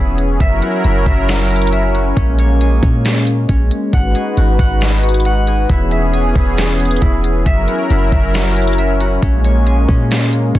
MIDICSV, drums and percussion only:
0, 0, Header, 1, 2, 480
1, 0, Start_track
1, 0, Tempo, 441176
1, 437, Time_signature, 4, 2, 24, 8
1, 11522, End_track
2, 0, Start_track
2, 0, Title_t, "Drums"
2, 198, Note_on_c, 9, 42, 71
2, 306, Note_off_c, 9, 42, 0
2, 438, Note_on_c, 9, 42, 66
2, 439, Note_on_c, 9, 36, 111
2, 547, Note_off_c, 9, 36, 0
2, 547, Note_off_c, 9, 42, 0
2, 676, Note_on_c, 9, 42, 83
2, 785, Note_off_c, 9, 42, 0
2, 917, Note_on_c, 9, 42, 66
2, 1026, Note_off_c, 9, 42, 0
2, 1156, Note_on_c, 9, 36, 95
2, 1156, Note_on_c, 9, 42, 55
2, 1265, Note_off_c, 9, 36, 0
2, 1265, Note_off_c, 9, 42, 0
2, 1397, Note_on_c, 9, 42, 64
2, 1405, Note_on_c, 9, 38, 116
2, 1506, Note_off_c, 9, 42, 0
2, 1513, Note_off_c, 9, 38, 0
2, 1637, Note_on_c, 9, 42, 62
2, 1698, Note_off_c, 9, 42, 0
2, 1698, Note_on_c, 9, 42, 62
2, 1758, Note_off_c, 9, 42, 0
2, 1758, Note_on_c, 9, 42, 57
2, 1817, Note_off_c, 9, 42, 0
2, 1817, Note_on_c, 9, 42, 58
2, 1877, Note_off_c, 9, 42, 0
2, 1877, Note_on_c, 9, 42, 73
2, 1986, Note_off_c, 9, 42, 0
2, 2119, Note_on_c, 9, 42, 73
2, 2227, Note_off_c, 9, 42, 0
2, 2358, Note_on_c, 9, 36, 110
2, 2359, Note_on_c, 9, 42, 70
2, 2467, Note_off_c, 9, 36, 0
2, 2467, Note_off_c, 9, 42, 0
2, 2596, Note_on_c, 9, 42, 85
2, 2705, Note_off_c, 9, 42, 0
2, 2838, Note_on_c, 9, 42, 66
2, 2947, Note_off_c, 9, 42, 0
2, 3076, Note_on_c, 9, 36, 102
2, 3076, Note_on_c, 9, 42, 57
2, 3185, Note_off_c, 9, 36, 0
2, 3185, Note_off_c, 9, 42, 0
2, 3317, Note_on_c, 9, 42, 66
2, 3324, Note_on_c, 9, 38, 110
2, 3426, Note_off_c, 9, 42, 0
2, 3433, Note_off_c, 9, 38, 0
2, 3556, Note_on_c, 9, 42, 73
2, 3665, Note_off_c, 9, 42, 0
2, 3796, Note_on_c, 9, 42, 70
2, 3798, Note_on_c, 9, 36, 90
2, 3905, Note_off_c, 9, 42, 0
2, 3907, Note_off_c, 9, 36, 0
2, 4037, Note_on_c, 9, 42, 69
2, 4146, Note_off_c, 9, 42, 0
2, 4277, Note_on_c, 9, 42, 69
2, 4278, Note_on_c, 9, 36, 108
2, 4386, Note_off_c, 9, 36, 0
2, 4386, Note_off_c, 9, 42, 0
2, 4515, Note_on_c, 9, 42, 87
2, 4624, Note_off_c, 9, 42, 0
2, 4757, Note_on_c, 9, 42, 66
2, 4866, Note_off_c, 9, 42, 0
2, 4996, Note_on_c, 9, 36, 99
2, 4996, Note_on_c, 9, 42, 55
2, 5104, Note_off_c, 9, 36, 0
2, 5105, Note_off_c, 9, 42, 0
2, 5236, Note_on_c, 9, 42, 59
2, 5243, Note_on_c, 9, 38, 110
2, 5344, Note_off_c, 9, 42, 0
2, 5352, Note_off_c, 9, 38, 0
2, 5476, Note_on_c, 9, 42, 61
2, 5536, Note_off_c, 9, 42, 0
2, 5536, Note_on_c, 9, 42, 59
2, 5595, Note_off_c, 9, 42, 0
2, 5595, Note_on_c, 9, 42, 59
2, 5655, Note_off_c, 9, 42, 0
2, 5655, Note_on_c, 9, 42, 59
2, 5714, Note_off_c, 9, 42, 0
2, 5714, Note_on_c, 9, 42, 75
2, 5823, Note_off_c, 9, 42, 0
2, 5954, Note_on_c, 9, 42, 72
2, 6063, Note_off_c, 9, 42, 0
2, 6195, Note_on_c, 9, 42, 67
2, 6197, Note_on_c, 9, 36, 105
2, 6304, Note_off_c, 9, 42, 0
2, 6305, Note_off_c, 9, 36, 0
2, 6434, Note_on_c, 9, 42, 86
2, 6543, Note_off_c, 9, 42, 0
2, 6675, Note_on_c, 9, 42, 66
2, 6784, Note_off_c, 9, 42, 0
2, 6915, Note_on_c, 9, 36, 98
2, 6915, Note_on_c, 9, 46, 42
2, 7023, Note_off_c, 9, 36, 0
2, 7024, Note_off_c, 9, 46, 0
2, 7155, Note_on_c, 9, 42, 64
2, 7163, Note_on_c, 9, 38, 111
2, 7264, Note_off_c, 9, 42, 0
2, 7271, Note_off_c, 9, 38, 0
2, 7397, Note_on_c, 9, 42, 61
2, 7457, Note_off_c, 9, 42, 0
2, 7457, Note_on_c, 9, 42, 59
2, 7516, Note_off_c, 9, 42, 0
2, 7516, Note_on_c, 9, 42, 56
2, 7577, Note_off_c, 9, 42, 0
2, 7577, Note_on_c, 9, 42, 57
2, 7636, Note_off_c, 9, 42, 0
2, 7636, Note_on_c, 9, 42, 73
2, 7637, Note_on_c, 9, 36, 92
2, 7745, Note_off_c, 9, 42, 0
2, 7746, Note_off_c, 9, 36, 0
2, 7877, Note_on_c, 9, 42, 73
2, 7986, Note_off_c, 9, 42, 0
2, 8117, Note_on_c, 9, 36, 115
2, 8117, Note_on_c, 9, 42, 72
2, 8226, Note_off_c, 9, 36, 0
2, 8226, Note_off_c, 9, 42, 0
2, 8355, Note_on_c, 9, 42, 85
2, 8464, Note_off_c, 9, 42, 0
2, 8599, Note_on_c, 9, 42, 66
2, 8707, Note_off_c, 9, 42, 0
2, 8836, Note_on_c, 9, 36, 98
2, 8837, Note_on_c, 9, 42, 54
2, 8944, Note_off_c, 9, 36, 0
2, 8945, Note_off_c, 9, 42, 0
2, 9078, Note_on_c, 9, 42, 63
2, 9085, Note_on_c, 9, 38, 114
2, 9187, Note_off_c, 9, 42, 0
2, 9194, Note_off_c, 9, 38, 0
2, 9318, Note_on_c, 9, 42, 62
2, 9377, Note_off_c, 9, 42, 0
2, 9377, Note_on_c, 9, 42, 59
2, 9438, Note_off_c, 9, 42, 0
2, 9438, Note_on_c, 9, 42, 57
2, 9497, Note_off_c, 9, 42, 0
2, 9497, Note_on_c, 9, 42, 57
2, 9556, Note_off_c, 9, 42, 0
2, 9556, Note_on_c, 9, 42, 72
2, 9665, Note_off_c, 9, 42, 0
2, 9796, Note_on_c, 9, 42, 72
2, 9905, Note_off_c, 9, 42, 0
2, 10037, Note_on_c, 9, 36, 109
2, 10037, Note_on_c, 9, 42, 69
2, 10146, Note_off_c, 9, 36, 0
2, 10146, Note_off_c, 9, 42, 0
2, 10276, Note_on_c, 9, 42, 88
2, 10385, Note_off_c, 9, 42, 0
2, 10517, Note_on_c, 9, 42, 68
2, 10626, Note_off_c, 9, 42, 0
2, 10756, Note_on_c, 9, 36, 99
2, 10758, Note_on_c, 9, 42, 58
2, 10865, Note_off_c, 9, 36, 0
2, 10867, Note_off_c, 9, 42, 0
2, 10999, Note_on_c, 9, 42, 62
2, 11006, Note_on_c, 9, 38, 109
2, 11108, Note_off_c, 9, 42, 0
2, 11115, Note_off_c, 9, 38, 0
2, 11238, Note_on_c, 9, 42, 72
2, 11347, Note_off_c, 9, 42, 0
2, 11478, Note_on_c, 9, 36, 88
2, 11478, Note_on_c, 9, 42, 71
2, 11522, Note_off_c, 9, 36, 0
2, 11522, Note_off_c, 9, 42, 0
2, 11522, End_track
0, 0, End_of_file